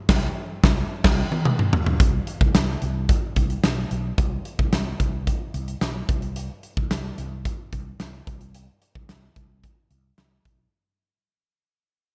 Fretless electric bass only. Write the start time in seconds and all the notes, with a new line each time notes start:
0.09 C2
0.63 C2
1.05 C2
2.00 C2
2.41 C2
2.55 C2
2.82 C2
3.36 C2
3.64 B1
3.91 B1
4.18 C2
4.59 C2
4.73 C2
5.00 C2
5.54 C2
5.81 B1
6.09 C2
6.77 C2
6.91 C2
7.18 C2
7.73 C2
8.00 C2
8.27 C2
8.95 C2
9.09 C2
9.36 C2
9.91 C2
10.18 C2
10.45 B1